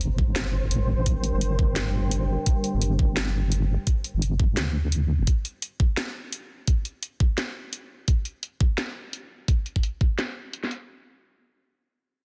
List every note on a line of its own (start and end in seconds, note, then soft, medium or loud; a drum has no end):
0.00 0.35 G1 loud
0.00 5.27 G3 medium
0.00 5.27 D4 medium
0.00 5.27 A#4 medium
0.00 0.15 C5 medium
0.00 2.47 C5 medium
0.00 5.27 G5 medium
0.00 closed hi-hat medium
0.00 sub drop medium
0.18 kick loud
0.36 0.70 G1 medium
0.36 snare loud
0.36 closed hi-hat medium
0.71 1.32 A1 medium
0.71 closed hi-hat medium
1.06 kick loud
1.06 closed hi-hat medium
1.24 closed hi-hat soft
1.34 2.38 G1 medium
1.41 closed hi-hat medium
1.59 kick loud
1.76 snare loud
1.76 closed hi-hat medium
2.11 closed hi-hat medium
2.46 kick loud
2.46 closed hi-hat medium
2.64 closed hi-hat soft
2.74 3.78 G1 loud
2.81 closed hi-hat medium
2.99 kick loud
3.17 snare loud
3.17 closed hi-hat medium
3.52 closed hi-hat medium
3.87 kick loud
3.87 closed hi-hat medium
4.04 closed hi-hat soft
4.14 4.59 G1 medium
4.22 closed hi-hat medium
4.40 kick loud
4.57 5.21 D2 loud
4.57 snare loud
4.57 closed hi-hat medium
4.92 closed hi-hat medium
5.20 5.26 F1 loud
5.27 kick loud
5.27 closed hi-hat medium
5.45 closed hi-hat soft
5.62 closed hi-hat medium
5.80 kick loud
5.97 snare loud
5.97 closed hi-hat medium
6.33 closed hi-hat medium
6.67 kick loud
6.67 closed hi-hat medium
6.85 closed hi-hat soft
7.03 closed hi-hat medium
7.20 kick loud
7.38 snare loud
7.38 closed hi-hat medium
7.73 closed hi-hat medium
8.08 kick loud
8.08 closed hi-hat medium
8.25 closed hi-hat soft
8.43 closed hi-hat medium
8.61 kick loud
8.78 snare loud
8.78 closed hi-hat medium
9.13 closed hi-hat medium
9.48 kick loud
9.48 closed hi-hat medium
9.66 closed hi-hat soft
9.76 kick medium
9.83 closed hi-hat medium
10.01 kick medium
10.19 snare loud
10.19 closed hi-hat medium
10.53 closed hi-hat medium
10.64 snare soft
10.71 closed hi-hat soft